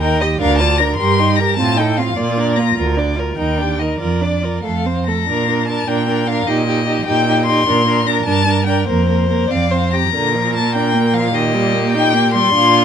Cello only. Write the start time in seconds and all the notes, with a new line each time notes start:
Already playing: D#2
0.41 D2
0.98 G2
1.58 A2
2.17 A#2
2.77 D2
3.38 D#2
4.00 F2
4.64 F2
5.28 A#2
5.87 A#2
6.46 A#2
7.06 A#2
7.67 A#2
8.26 G2
8.88 F2
9.50 F2
10.14 A#2
12.55 A#2